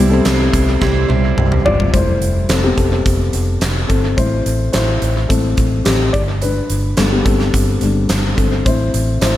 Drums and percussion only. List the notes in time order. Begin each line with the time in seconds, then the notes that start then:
0.25 snare, clap, closed hi-hat
0.54 kick, closed hi-hat
0.82 kick, snare
1.10 high tom
1.38 mid tom
1.52 mid tom
1.66 floor tom
1.80 floor tom
1.94 kick, closed hi-hat
2.22 closed hi-hat
2.49 snare, clap, closed hi-hat
2.78 kick, closed hi-hat
3.06 kick, closed hi-hat
3.33 closed hi-hat
3.61 snare, clap, closed hi-hat
3.90 kick, closed hi-hat
4.18 kick, closed hi-hat
4.46 closed hi-hat
4.73 snare, clap, closed hi-hat
5.02 closed hi-hat
5.30 kick, closed hi-hat
5.57 kick, closed hi-hat
5.85 snare, clap, closed hi-hat
6.14 kick, closed hi-hat
6.42 closed hi-hat
6.70 closed hi-hat
6.97 snare, clap, closed hi-hat
7.26 kick, closed hi-hat
7.40 snare
7.54 kick, closed hi-hat
7.81 closed hi-hat
8.09 snare, clap, closed hi-hat
8.38 kick, closed hi-hat
8.66 kick, closed hi-hat
8.94 closed hi-hat
9.21 snare, clap, closed hi-hat